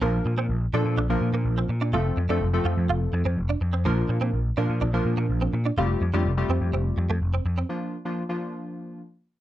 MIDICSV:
0, 0, Header, 1, 5, 480
1, 0, Start_track
1, 0, Key_signature, -2, "major"
1, 0, Tempo, 480000
1, 16, Time_signature, 4, 2, 24, 8
1, 9401, End_track
2, 0, Start_track
2, 0, Title_t, "Synth keys"
2, 0, Program_c, 0, 88
2, 15, Note_on_c, 0, 53, 83
2, 16, Note_on_c, 0, 58, 79
2, 16, Note_on_c, 0, 62, 78
2, 17, Note_on_c, 0, 65, 78
2, 19, Note_on_c, 0, 70, 93
2, 556, Note_off_c, 0, 53, 0
2, 556, Note_off_c, 0, 58, 0
2, 556, Note_off_c, 0, 62, 0
2, 557, Note_off_c, 0, 65, 0
2, 558, Note_off_c, 0, 70, 0
2, 735, Note_on_c, 0, 53, 88
2, 736, Note_on_c, 0, 58, 81
2, 737, Note_on_c, 0, 62, 82
2, 739, Note_on_c, 0, 65, 83
2, 740, Note_on_c, 0, 69, 100
2, 1005, Note_off_c, 0, 53, 0
2, 1006, Note_off_c, 0, 58, 0
2, 1007, Note_off_c, 0, 62, 0
2, 1008, Note_off_c, 0, 65, 0
2, 1008, Note_off_c, 0, 69, 0
2, 1097, Note_on_c, 0, 53, 89
2, 1097, Note_on_c, 0, 58, 81
2, 1099, Note_on_c, 0, 62, 77
2, 1101, Note_on_c, 0, 65, 81
2, 1101, Note_on_c, 0, 70, 96
2, 1727, Note_off_c, 0, 53, 0
2, 1727, Note_off_c, 0, 58, 0
2, 1728, Note_off_c, 0, 62, 0
2, 1729, Note_off_c, 0, 65, 0
2, 1729, Note_off_c, 0, 70, 0
2, 1932, Note_on_c, 0, 53, 86
2, 1934, Note_on_c, 0, 57, 81
2, 1935, Note_on_c, 0, 60, 80
2, 1937, Note_on_c, 0, 65, 76
2, 1939, Note_on_c, 0, 69, 97
2, 2204, Note_off_c, 0, 53, 0
2, 2205, Note_off_c, 0, 57, 0
2, 2205, Note_off_c, 0, 60, 0
2, 2206, Note_off_c, 0, 65, 0
2, 2207, Note_off_c, 0, 69, 0
2, 2292, Note_on_c, 0, 53, 85
2, 2293, Note_on_c, 0, 57, 80
2, 2294, Note_on_c, 0, 60, 78
2, 2296, Note_on_c, 0, 65, 81
2, 2297, Note_on_c, 0, 69, 101
2, 2474, Note_off_c, 0, 53, 0
2, 2474, Note_off_c, 0, 57, 0
2, 2475, Note_off_c, 0, 60, 0
2, 2476, Note_off_c, 0, 65, 0
2, 2477, Note_off_c, 0, 69, 0
2, 2533, Note_on_c, 0, 53, 91
2, 2534, Note_on_c, 0, 57, 81
2, 2536, Note_on_c, 0, 60, 81
2, 2536, Note_on_c, 0, 65, 82
2, 2537, Note_on_c, 0, 69, 98
2, 3255, Note_off_c, 0, 53, 0
2, 3255, Note_off_c, 0, 57, 0
2, 3256, Note_off_c, 0, 60, 0
2, 3256, Note_off_c, 0, 65, 0
2, 3257, Note_off_c, 0, 69, 0
2, 3852, Note_on_c, 0, 53, 91
2, 3853, Note_on_c, 0, 58, 78
2, 3855, Note_on_c, 0, 62, 80
2, 3856, Note_on_c, 0, 65, 81
2, 3857, Note_on_c, 0, 70, 101
2, 4394, Note_off_c, 0, 53, 0
2, 4395, Note_off_c, 0, 58, 0
2, 4396, Note_off_c, 0, 62, 0
2, 4396, Note_off_c, 0, 65, 0
2, 4397, Note_off_c, 0, 70, 0
2, 4574, Note_on_c, 0, 53, 92
2, 4576, Note_on_c, 0, 58, 81
2, 4577, Note_on_c, 0, 62, 82
2, 4577, Note_on_c, 0, 65, 82
2, 4580, Note_on_c, 0, 70, 99
2, 4845, Note_off_c, 0, 53, 0
2, 4846, Note_off_c, 0, 58, 0
2, 4846, Note_off_c, 0, 62, 0
2, 4846, Note_off_c, 0, 65, 0
2, 4848, Note_off_c, 0, 70, 0
2, 4935, Note_on_c, 0, 53, 89
2, 4936, Note_on_c, 0, 58, 78
2, 4938, Note_on_c, 0, 62, 82
2, 4939, Note_on_c, 0, 65, 80
2, 4940, Note_on_c, 0, 70, 99
2, 5566, Note_off_c, 0, 53, 0
2, 5566, Note_off_c, 0, 58, 0
2, 5568, Note_off_c, 0, 62, 0
2, 5568, Note_off_c, 0, 65, 0
2, 5568, Note_off_c, 0, 70, 0
2, 5774, Note_on_c, 0, 55, 86
2, 5776, Note_on_c, 0, 57, 80
2, 5778, Note_on_c, 0, 60, 81
2, 5779, Note_on_c, 0, 65, 79
2, 5781, Note_on_c, 0, 67, 99
2, 6045, Note_off_c, 0, 55, 0
2, 6046, Note_off_c, 0, 57, 0
2, 6047, Note_off_c, 0, 60, 0
2, 6048, Note_off_c, 0, 65, 0
2, 6048, Note_off_c, 0, 67, 0
2, 6135, Note_on_c, 0, 55, 88
2, 6136, Note_on_c, 0, 57, 83
2, 6136, Note_on_c, 0, 60, 80
2, 6139, Note_on_c, 0, 65, 80
2, 6140, Note_on_c, 0, 67, 99
2, 6315, Note_off_c, 0, 55, 0
2, 6316, Note_off_c, 0, 57, 0
2, 6316, Note_off_c, 0, 60, 0
2, 6317, Note_off_c, 0, 65, 0
2, 6318, Note_off_c, 0, 67, 0
2, 6373, Note_on_c, 0, 55, 88
2, 6374, Note_on_c, 0, 57, 80
2, 6375, Note_on_c, 0, 60, 76
2, 6376, Note_on_c, 0, 65, 80
2, 6378, Note_on_c, 0, 67, 93
2, 7095, Note_off_c, 0, 55, 0
2, 7095, Note_off_c, 0, 57, 0
2, 7096, Note_off_c, 0, 60, 0
2, 7096, Note_off_c, 0, 65, 0
2, 7097, Note_off_c, 0, 67, 0
2, 7693, Note_on_c, 0, 53, 78
2, 7693, Note_on_c, 0, 58, 68
2, 7695, Note_on_c, 0, 62, 73
2, 7697, Note_on_c, 0, 65, 83
2, 7964, Note_off_c, 0, 53, 0
2, 7964, Note_off_c, 0, 58, 0
2, 7965, Note_off_c, 0, 62, 0
2, 7966, Note_off_c, 0, 65, 0
2, 8051, Note_on_c, 0, 53, 82
2, 8053, Note_on_c, 0, 58, 70
2, 8055, Note_on_c, 0, 62, 73
2, 8057, Note_on_c, 0, 65, 84
2, 8234, Note_off_c, 0, 53, 0
2, 8234, Note_off_c, 0, 58, 0
2, 8235, Note_off_c, 0, 62, 0
2, 8236, Note_off_c, 0, 65, 0
2, 8290, Note_on_c, 0, 53, 80
2, 8292, Note_on_c, 0, 58, 68
2, 8294, Note_on_c, 0, 62, 70
2, 8296, Note_on_c, 0, 65, 87
2, 9014, Note_off_c, 0, 53, 0
2, 9014, Note_off_c, 0, 58, 0
2, 9016, Note_off_c, 0, 62, 0
2, 9016, Note_off_c, 0, 65, 0
2, 9401, End_track
3, 0, Start_track
3, 0, Title_t, "Clean electric guitar"
3, 0, Program_c, 1, 27
3, 15, Note_on_c, 1, 58, 92
3, 101, Note_off_c, 1, 58, 0
3, 378, Note_on_c, 1, 60, 82
3, 462, Note_off_c, 1, 60, 0
3, 738, Note_on_c, 1, 62, 84
3, 822, Note_off_c, 1, 62, 0
3, 976, Note_on_c, 1, 62, 92
3, 1061, Note_off_c, 1, 62, 0
3, 1336, Note_on_c, 1, 58, 73
3, 1422, Note_off_c, 1, 58, 0
3, 1577, Note_on_c, 1, 60, 77
3, 1662, Note_off_c, 1, 60, 0
3, 1812, Note_on_c, 1, 62, 78
3, 1899, Note_off_c, 1, 62, 0
3, 1934, Note_on_c, 1, 65, 96
3, 2020, Note_off_c, 1, 65, 0
3, 2293, Note_on_c, 1, 62, 74
3, 2379, Note_off_c, 1, 62, 0
3, 2654, Note_on_c, 1, 65, 75
3, 2740, Note_off_c, 1, 65, 0
3, 2894, Note_on_c, 1, 65, 85
3, 2980, Note_off_c, 1, 65, 0
3, 3254, Note_on_c, 1, 60, 84
3, 3340, Note_off_c, 1, 60, 0
3, 3493, Note_on_c, 1, 62, 76
3, 3579, Note_off_c, 1, 62, 0
3, 3730, Note_on_c, 1, 60, 73
3, 3818, Note_off_c, 1, 60, 0
3, 3852, Note_on_c, 1, 58, 97
3, 3939, Note_off_c, 1, 58, 0
3, 4210, Note_on_c, 1, 60, 82
3, 4298, Note_off_c, 1, 60, 0
3, 4571, Note_on_c, 1, 62, 84
3, 4658, Note_off_c, 1, 62, 0
3, 4812, Note_on_c, 1, 62, 95
3, 4899, Note_off_c, 1, 62, 0
3, 5172, Note_on_c, 1, 58, 74
3, 5259, Note_off_c, 1, 58, 0
3, 5413, Note_on_c, 1, 60, 77
3, 5500, Note_off_c, 1, 60, 0
3, 5655, Note_on_c, 1, 62, 72
3, 5740, Note_off_c, 1, 62, 0
3, 5777, Note_on_c, 1, 65, 96
3, 5862, Note_off_c, 1, 65, 0
3, 6136, Note_on_c, 1, 62, 72
3, 6222, Note_off_c, 1, 62, 0
3, 6498, Note_on_c, 1, 60, 78
3, 6583, Note_off_c, 1, 60, 0
3, 6735, Note_on_c, 1, 60, 84
3, 6821, Note_off_c, 1, 60, 0
3, 7096, Note_on_c, 1, 57, 82
3, 7182, Note_off_c, 1, 57, 0
3, 7336, Note_on_c, 1, 60, 75
3, 7422, Note_off_c, 1, 60, 0
3, 7576, Note_on_c, 1, 60, 74
3, 7662, Note_off_c, 1, 60, 0
3, 9401, End_track
4, 0, Start_track
4, 0, Title_t, "Picked electric bass"
4, 0, Program_c, 2, 34
4, 16, Note_on_c, 2, 34, 112
4, 172, Note_off_c, 2, 34, 0
4, 254, Note_on_c, 2, 46, 96
4, 333, Note_off_c, 2, 46, 0
4, 374, Note_on_c, 2, 46, 113
4, 452, Note_off_c, 2, 46, 0
4, 493, Note_on_c, 2, 34, 99
4, 650, Note_off_c, 2, 34, 0
4, 733, Note_on_c, 2, 46, 100
4, 812, Note_off_c, 2, 46, 0
4, 855, Note_on_c, 2, 46, 101
4, 974, Note_on_c, 2, 34, 114
4, 989, Note_off_c, 2, 46, 0
4, 1131, Note_off_c, 2, 34, 0
4, 1212, Note_on_c, 2, 46, 100
4, 1291, Note_off_c, 2, 46, 0
4, 1331, Note_on_c, 2, 46, 88
4, 1452, Note_on_c, 2, 34, 108
4, 1467, Note_off_c, 2, 46, 0
4, 1609, Note_off_c, 2, 34, 0
4, 1691, Note_on_c, 2, 46, 100
4, 1929, Note_on_c, 2, 29, 111
4, 1944, Note_off_c, 2, 46, 0
4, 2087, Note_off_c, 2, 29, 0
4, 2173, Note_on_c, 2, 41, 100
4, 2252, Note_off_c, 2, 41, 0
4, 2293, Note_on_c, 2, 41, 100
4, 2372, Note_off_c, 2, 41, 0
4, 2414, Note_on_c, 2, 29, 109
4, 2571, Note_off_c, 2, 29, 0
4, 2650, Note_on_c, 2, 41, 100
4, 2730, Note_off_c, 2, 41, 0
4, 2774, Note_on_c, 2, 41, 99
4, 2853, Note_off_c, 2, 41, 0
4, 2892, Note_on_c, 2, 29, 107
4, 3049, Note_off_c, 2, 29, 0
4, 3132, Note_on_c, 2, 41, 109
4, 3211, Note_off_c, 2, 41, 0
4, 3255, Note_on_c, 2, 41, 100
4, 3375, Note_on_c, 2, 29, 99
4, 3390, Note_off_c, 2, 41, 0
4, 3531, Note_off_c, 2, 29, 0
4, 3614, Note_on_c, 2, 41, 106
4, 3852, Note_on_c, 2, 34, 114
4, 3867, Note_off_c, 2, 41, 0
4, 4010, Note_off_c, 2, 34, 0
4, 4093, Note_on_c, 2, 46, 98
4, 4172, Note_off_c, 2, 46, 0
4, 4212, Note_on_c, 2, 46, 99
4, 4291, Note_off_c, 2, 46, 0
4, 4335, Note_on_c, 2, 34, 100
4, 4491, Note_off_c, 2, 34, 0
4, 4576, Note_on_c, 2, 46, 94
4, 4654, Note_off_c, 2, 46, 0
4, 4695, Note_on_c, 2, 46, 104
4, 4773, Note_off_c, 2, 46, 0
4, 4814, Note_on_c, 2, 34, 104
4, 4971, Note_off_c, 2, 34, 0
4, 5054, Note_on_c, 2, 46, 109
4, 5132, Note_off_c, 2, 46, 0
4, 5174, Note_on_c, 2, 46, 94
4, 5252, Note_off_c, 2, 46, 0
4, 5295, Note_on_c, 2, 34, 104
4, 5451, Note_off_c, 2, 34, 0
4, 5534, Note_on_c, 2, 46, 104
4, 5691, Note_off_c, 2, 46, 0
4, 5775, Note_on_c, 2, 29, 110
4, 5931, Note_off_c, 2, 29, 0
4, 6015, Note_on_c, 2, 41, 101
4, 6093, Note_off_c, 2, 41, 0
4, 6137, Note_on_c, 2, 41, 105
4, 6215, Note_off_c, 2, 41, 0
4, 6255, Note_on_c, 2, 29, 105
4, 6411, Note_off_c, 2, 29, 0
4, 6494, Note_on_c, 2, 41, 102
4, 6573, Note_off_c, 2, 41, 0
4, 6614, Note_on_c, 2, 41, 98
4, 6693, Note_off_c, 2, 41, 0
4, 6734, Note_on_c, 2, 29, 108
4, 6891, Note_off_c, 2, 29, 0
4, 6976, Note_on_c, 2, 41, 105
4, 7054, Note_off_c, 2, 41, 0
4, 7098, Note_on_c, 2, 41, 95
4, 7176, Note_off_c, 2, 41, 0
4, 7217, Note_on_c, 2, 29, 104
4, 7372, Note_off_c, 2, 29, 0
4, 7456, Note_on_c, 2, 41, 105
4, 7612, Note_off_c, 2, 41, 0
4, 9401, End_track
5, 0, Start_track
5, 0, Title_t, "Muted clean electric guitar strokes"
5, 259, Note_on_c, 9, 29, 45
5, 359, Note_off_c, 9, 29, 0
5, 1098, Note_on_c, 9, 29, 47
5, 1198, Note_off_c, 9, 29, 0
5, 1694, Note_on_c, 9, 29, 48
5, 1794, Note_off_c, 9, 29, 0
5, 2174, Note_on_c, 9, 29, 44
5, 2274, Note_off_c, 9, 29, 0
5, 3134, Note_on_c, 9, 29, 47
5, 3234, Note_off_c, 9, 29, 0
5, 3612, Note_on_c, 9, 29, 49
5, 3712, Note_off_c, 9, 29, 0
5, 4093, Note_on_c, 9, 29, 46
5, 4193, Note_off_c, 9, 29, 0
5, 4933, Note_on_c, 9, 29, 47
5, 5033, Note_off_c, 9, 29, 0
5, 5535, Note_on_c, 9, 29, 48
5, 5635, Note_off_c, 9, 29, 0
5, 6018, Note_on_c, 9, 29, 45
5, 6118, Note_off_c, 9, 29, 0
5, 6976, Note_on_c, 9, 29, 46
5, 7076, Note_off_c, 9, 29, 0
5, 7456, Note_on_c, 9, 29, 48
5, 7556, Note_off_c, 9, 29, 0
5, 9401, End_track
0, 0, End_of_file